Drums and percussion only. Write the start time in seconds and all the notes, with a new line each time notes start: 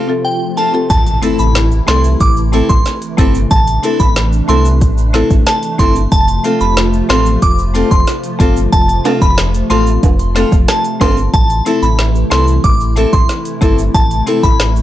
0.90 kick, closed hi-hat, shaker
1.06 closed hi-hat, shaker
1.23 closed hi-hat, shaker
1.39 shaker
1.55 snare, closed hi-hat, shaker
1.72 shaker
1.88 snare, closed hi-hat
2.04 shaker
2.20 kick, closed hi-hat, shaker
2.37 shaker
2.53 closed hi-hat
2.69 kick, shaker
2.86 snare, closed hi-hat, shaker
3.02 closed hi-hat, shaker
3.18 kick, closed hi-hat, shaker
3.35 shaker
3.51 kick, closed hi-hat, shaker
3.67 closed hi-hat, shaker
3.84 closed hi-hat, shaker
4.00 kick, shaker
4.16 snare, closed hi-hat, shaker
4.33 shaker
4.49 closed hi-hat
4.65 shaker
4.81 kick, closed hi-hat, shaker
4.98 shaker
5.14 snare, closed hi-hat
5.30 kick, shaker
5.46 snare, closed hi-hat, shaker
5.63 closed hi-hat, shaker
5.79 kick, closed hi-hat, shaker
5.96 shaker
6.12 kick, closed hi-hat, shaker
6.28 closed hi-hat, shaker
6.44 closed hi-hat, shaker
6.61 shaker
6.77 snare, closed hi-hat, shaker
6.93 shaker
7.10 snare, closed hi-hat
7.26 shaker
7.42 kick, closed hi-hat, shaker
7.58 shaker
7.75 closed hi-hat
7.91 kick, shaker
8.07 snare, closed hi-hat, shaker
8.24 closed hi-hat, shaker
8.40 kick, closed hi-hat, shaker
8.57 shaker
8.73 kick, closed hi-hat, shaker
8.89 closed hi-hat, shaker
9.05 closed hi-hat, high timbale, shaker
9.21 kick, shaker
9.38 snare, closed hi-hat, shaker
9.54 closed hi-hat, shaker
9.71 closed hi-hat
9.87 shaker
10.03 kick, closed hi-hat, high timbale, shaker
10.19 closed hi-hat, shaker
10.36 snare, closed hi-hat
10.52 kick, shaker
10.68 cross-stick, snare, closed hi-hat, shaker
10.85 closed hi-hat, shaker
11.01 kick, closed hi-hat, high timbale, shaker
11.18 shaker
11.34 kick, closed hi-hat, shaker
11.50 closed hi-hat, shaker
11.66 closed hi-hat, shaker
11.83 shaker
11.99 snare, closed hi-hat, shaker
12.15 shaker
12.32 snare, closed hi-hat
12.48 shaker
12.64 kick, closed hi-hat, shaker
12.80 shaker
12.97 closed hi-hat
13.13 kick, shaker
13.29 snare, closed hi-hat, shaker
13.45 closed hi-hat, shaker
13.62 kick, closed hi-hat, shaker
13.78 shaker
13.94 kick, closed hi-hat, shaker
14.11 closed hi-hat, shaker
14.27 closed hi-hat, shaker
14.43 kick, shaker
14.60 snare, closed hi-hat, shaker
14.76 shaker